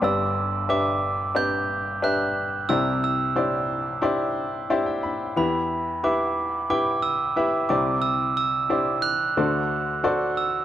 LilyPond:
<<
  \new Staff \with { instrumentName = "Glockenspiel" } { \time 4/4 \key g \major \tempo 4 = 90 e'''4 d'''4 g'''4 fis'''4 | e'''8 e'''2 r4. | b''4 d'''4 d'''8 e'''4 d'''8 | e'''8 e'''4 fis'''4. r8 e'''8 | }
  \new Staff \with { instrumentName = "Upright piano" } { \time 4/4 \key g \major << { r1 | r2. e''16 g''16 b''8 | r1 | r1 | } \\ { <d' g' b' d''>4 <d' g' b' e''>4 <d' g' b' d''>4 <d' g' b' e''>4 | <e' g' c'' d''>4 <e' g' c'' d''>4 <e' g' c'' d''>4 <e' g' c'' d''>4 | <e' g' b' e''>4 <e' g' b' e''>4 <e' g' b' g''>4 <e' g' b' e''>8 <e' g' c'' d''>8~ | <e' g' c'' d''>4 <e' g' c'' d''>4 <fis' a' c'' d''>4 <fis' a' c'' d''>4 | } >> }
  \new Staff \with { instrumentName = "Upright piano" } { \clef bass \time 4/4 \key g \major <g,, g,>1 | <c, c>1 | <e, e>2.~ <e, e>8 <c, c>8~ | <c, c>2 <d, d>2 | }
>>